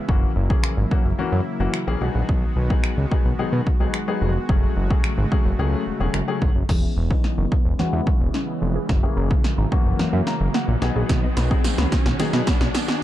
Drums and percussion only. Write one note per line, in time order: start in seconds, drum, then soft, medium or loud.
0.09 kick loud
0.50 kick medium
0.64 finger snap loud
0.91 kick medium
1.74 finger snap loud
2.29 kick loud
2.70 kick medium
2.84 finger snap loud
3.11 kick medium
3.67 kick medium
3.94 finger snap loud
4.49 kick loud
4.90 kick medium
5.04 finger snap loud
5.32 kick medium
6.14 finger snap loud
6.42 kick medium
6.69 kick loud
6.69 snare medium
6.69 crash medium
7.11 kick medium
7.24 snare medium
7.52 kick medium
7.79 snare medium
8.07 kick medium
8.34 snare medium
8.89 kick loud
8.89 snare medium
9.31 kick medium
9.44 snare medium
9.72 kick medium
9.99 snare medium
10.27 snare medium
10.54 snare medium
10.82 snare medium
11.09 kick loud
11.09 snare loud
11.09 closed hi-hat medium
11.37 snare medium
11.37 closed hi-hat medium
11.37 tambourine soft
11.51 kick medium
11.64 snare loud
11.64 closed hi-hat loud
11.64 tambourine medium
11.78 snare loud
11.92 kick medium
11.92 snare loud
11.92 closed hi-hat medium
11.92 tambourine soft
12.06 snare loud
12.19 snare loud
12.19 closed hi-hat loud
12.19 tambourine soft
12.33 snare loud
12.47 kick loud
12.47 snare loud
12.47 closed hi-hat medium
12.47 tambourine medium
12.61 snare loud
12.74 snare loud
12.74 closed hi-hat loud
12.74 tambourine medium
12.88 snare loud